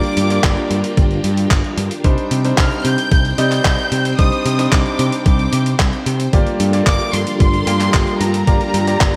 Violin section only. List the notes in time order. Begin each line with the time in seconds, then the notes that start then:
Already playing: D6
2.58 F6
2.85 G6
3.38 G6
4.19 D#6
4.72 D6
5.26 D6
6.87 D6
7.14 C6
7.40 C6
8.21 A#5